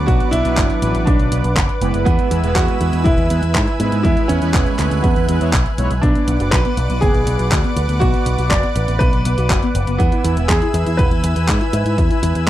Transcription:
Already playing: F#3 B3 D4 B4 D5 F#5 D6
0.06 B1 F#4, kick, closed hi-hat
0.20 closed hi-hat
0.31 B1 F#3 B3 D4 E4 B4, closed hi-hat
0.45 B1 F#3 B3 D4 B4, closed hi-hat
0.57 F#1, kick, clap, closed hi-hat
0.70 closed hi-hat
0.82 A1 F#3 B3 D4 B4, closed hi-hat
0.95 A1, closed hi-hat
1.05 B1 D4, kick, closed hi-hat
1.19 B1, closed hi-hat
1.32 B1 F#3 B3 D4 B4, closed hi-hat
1.44 B1, closed hi-hat
1.57 F#1, kick, clap, closed hi-hat
1.69 closed hi-hat
1.81 F#1 G#3 B3 E4 B4, closed hi-hat
1.94 F#1, closed hi-hat
2.05 E2 B3 E5 G#5 E6, kick, closed hi-hat
2.19 closed hi-hat
2.31 E2 G#3 B3 E4 B4, closed hi-hat
2.43 E1 G#3 B3 E4 B4, closed hi-hat
2.55 E2 F#4, kick, clap, closed hi-hat
2.68 closed hi-hat
2.81 E2 G#3 B3 E4 B4, closed hi-hat
2.93 E2, closed hi-hat
3.04 E1 E4, kick, closed hi-hat
3.18 E2, closed hi-hat
3.30 E2 G#3 B3 E4 B4, closed hi-hat
3.43 E2, closed hi-hat
3.55 G#2, kick, clap, closed hi-hat
3.67 closed hi-hat
3.80 G#2 G#3 B3 E4 B4, closed hi-hat
3.92 G#2, closed hi-hat
4.03 E2 E4 F#6, kick, closed hi-hat
4.17 closed hi-hat
4.28 E2 G#3 B3 C#4 E4 B4, closed hi-hat
4.42 E2 G#3 B3 E4 B4, closed hi-hat
4.54 E1, kick, clap, closed hi-hat
4.67 closed hi-hat
4.79 D2 G#3 B3 E4 B4, clap, closed hi-hat
4.91 D2, closed hi-hat
5.02 E2 B3, kick, closed hi-hat
5.16 E2, closed hi-hat
5.29 E2 G#3 B3 E4 B4, closed hi-hat
5.41 E2 G#3 B3 E4 C#5, closed hi-hat
5.53 B1, kick, clap, closed hi-hat
5.66 closed hi-hat
5.78 B1 G#3 B3 E4 C#5, closed hi-hat
5.91 B1, closed hi-hat
6.01 B1 B3 D4 B4 D5 F#5 D6, kick, closed hi-hat
6.15 B3, closed hi-hat
6.28 B1 B3, closed hi-hat
6.40 F#1 F#4, closed hi-hat
6.51 B1 F#4 B4, kick, clap, closed hi-hat
6.65 B3, closed hi-hat
6.77 B1 B4, closed hi-hat
6.90 B1 B3, closed hi-hat
7.01 F#1 B3 G#4, kick, closed hi-hat
7.14 B1 B3, closed hi-hat
7.27 B1 B3, closed hi-hat
7.39 B1 F#4, closed hi-hat
7.52 D2 F#4, kick, clap, closed hi-hat
7.64 B3, closed hi-hat
7.76 D2 B4, closed hi-hat
7.89 D2 B3, closed hi-hat
8.00 B1 B3 F#4, kick, closed hi-hat
8.14 B3, closed hi-hat
8.26 B1 B3, closed hi-hat
8.38 B1 F#4, closed hi-hat
8.49 F#1 F#4 D5, kick, clap, closed hi-hat
8.63 B3, closed hi-hat
8.76 A1 B4, closed hi-hat
8.88 A1 B3, closed hi-hat
8.99 B1 B3 B4, kick, closed hi-hat
9.13 B1 B3, closed hi-hat
9.25 B1 B3, closed hi-hat
9.38 B1 F#4, closed hi-hat
9.50 F#1 F#4, kick, clap, closed hi-hat
9.62 B3, closed hi-hat
9.75 F#1 B4, closed hi-hat
9.87 F#1 B3, closed hi-hat
9.98 E2 B3 E4 B4 E5 G#5 E6, kick, closed hi-hat
10.12 E4, closed hi-hat
10.24 E2 E4, closed hi-hat
10.37 E1 B4, closed hi-hat
10.48 E2 G#4, kick, clap, closed hi-hat
10.62 E4, closed hi-hat
10.74 E2 E5, closed hi-hat
10.86 E2 E4, closed hi-hat
10.97 E1 E4 B4, kick, closed hi-hat
11.11 E2 E4, closed hi-hat
11.23 E2 E4, closed hi-hat
11.36 E2 B4, closed hi-hat
11.48 G#2 B4, kick, clap, closed hi-hat
11.61 E4, closed hi-hat
11.73 G#2 E5, closed hi-hat
11.85 G#2 E4, closed hi-hat
11.98 E2 E4, kick, closed hi-hat
12.10 E4, closed hi-hat
12.23 E2 E4, closed hi-hat
12.35 E2 B4, closed hi-hat

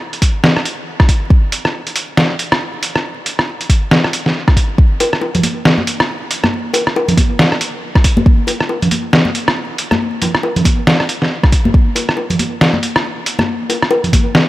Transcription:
0.13 closed hi-hat
0.22 kick, closed hi-hat
0.44 snare
0.56 cross-stick
0.65 closed hi-hat
1.00 kick, cross-stick
1.09 kick, closed hi-hat
1.30 kick
1.52 closed hi-hat
1.65 cross-stick
1.87 closed hi-hat
1.96 closed hi-hat
2.17 snare
2.39 closed hi-hat
2.52 cross-stick
2.83 closed hi-hat
2.96 cross-stick
3.26 closed hi-hat
3.39 cross-stick
3.61 closed hi-hat
3.70 kick, closed hi-hat
3.91 snare
4.04 cross-stick
4.13 closed hi-hat
4.26 snare
4.48 kick, cross-stick
4.57 kick, closed hi-hat
4.78 kick
5.00 closed hi-hat, high bongo
5.13 cross-stick
5.21 high bongo
5.35 closed hi-hat, low conga
5.43 closed hi-hat, high conga
5.65 snare
5.78 high conga
5.87 closed hi-hat
6.00 cross-stick
6.31 closed hi-hat
6.44 cross-stick, high conga
6.74 closed hi-hat, high bongo
6.87 cross-stick
6.96 high bongo
7.08 closed hi-hat, low conga
7.17 kick, closed hi-hat, high conga
7.39 snare
7.52 cross-stick
7.61 closed hi-hat
7.95 kick, cross-stick
8.04 kick, closed hi-hat
8.17 high conga
8.26 kick
8.47 closed hi-hat, high bongo
8.61 cross-stick
8.69 high bongo
8.82 closed hi-hat, low conga
8.91 closed hi-hat, high conga
9.13 snare
9.25 high conga
9.35 closed hi-hat
9.48 cross-stick
9.78 closed hi-hat
9.91 cross-stick, high conga
10.22 closed hi-hat, high bongo, low conga
10.35 cross-stick
10.43 high bongo
10.56 closed hi-hat, low conga
10.65 kick, closed hi-hat, high conga
10.87 snare
11.00 cross-stick
11.09 closed hi-hat
11.22 snare
11.43 kick, cross-stick
11.52 kick, closed hi-hat
11.65 high conga
11.74 kick
11.96 closed hi-hat, high bongo
12.09 cross-stick
12.17 high bongo
12.30 closed hi-hat, low conga
12.39 closed hi-hat, high conga
12.61 snare
12.73 high conga
12.83 closed hi-hat
12.96 cross-stick
13.26 closed hi-hat
13.39 cross-stick, high conga
13.70 closed hi-hat, high bongo
13.82 cross-stick
13.91 high bongo
14.04 closed hi-hat, low conga
14.13 kick, closed hi-hat, high conga
14.35 snare

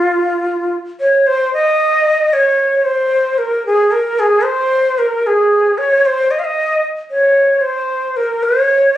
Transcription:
Already playing: F4
1.00 C#5
1.27 C5
1.53 D#5
2.33 C#5
2.85 C5
3.38 A#4
3.66 G#4
3.92 A#4
4.19 G#4
4.44 C5
4.98 A#4
5.27 G#4
5.78 C#5
6.05 C5
6.31 D#5
6.39 F5
6.45 D#5
7.11 C#5
7.61 C5
8.17 A#4
8.43 C#5

